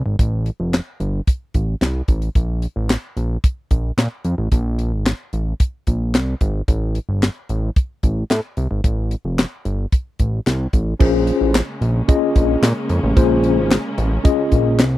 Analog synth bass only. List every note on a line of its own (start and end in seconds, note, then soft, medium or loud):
0.06 0.16 G#1 medium
0.19 0.51 A1 medium
0.60 0.81 F1 medium
1.00 1.21 G1 medium
1.55 1.75 A1 medium
1.81 2.02 C2 medium
2.08 2.29 A1 medium
2.35 2.67 A#1 medium
2.76 2.97 A1 medium
3.17 3.37 A#1 medium
3.71 3.92 A#1 medium
3.98 4.08 A#2 loud
4.25 4.35 F2 medium
4.38 4.49 A1 medium
4.52 4.94 A#1 loud
4.92 5.13 G#1 medium
5.33 5.54 A1 medium
5.87 6.15 A#1 medium
6.14 6.35 C2 loud
6.41 6.62 G#1 medium
6.68 6.99 A1 loud
7.09 7.29 G1 medium
7.49 7.70 A1 loud
8.03 8.24 A1 medium
8.30 8.41 A2 loud
8.57 8.68 C2 medium
8.71 8.81 G#1 medium
8.84 9.15 A1 medium
9.25 9.46 F1 medium
9.65 9.86 G1 medium
10.19 10.40 A1 medium
10.46 10.67 C2 loud
10.73 10.94 A1 medium
11.01 11.32 A#1 medium
11.41 11.62 A1 medium
11.81 12.02 A#1 loud
12.36 12.57 A#1 medium
12.63 12.73 A#2 loud
12.90 13.00 F2 medium
13.03 13.14 A1 loud
13.17 13.59 A#1 loud
13.57 13.78 G#1 medium
13.98 14.19 A1 loud
14.52 14.81 A#1 medium
14.79 14.98 C2 loud